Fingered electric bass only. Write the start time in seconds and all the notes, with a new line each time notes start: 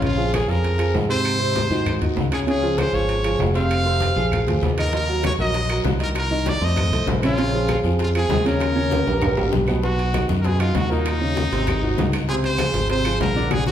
Already playing: A#1
0.48 F2
0.95 G#2
1.71 G#2
2.02 D#2
2.17 C#2
2.93 G#1
3.39 F1
4.16 A#1
4.47 D2
4.63 D#2
5.38 A#1
5.84 C2
6.61 F2
6.91 C2
7.06 A#1
7.84 F2
8.29 D#2
9.07 A#1
9.37 G#1
9.52 B1
10.29 F#2
10.75 D#2
11.52 G#1
11.97 C#2
12.74 G#1
13.20 A#1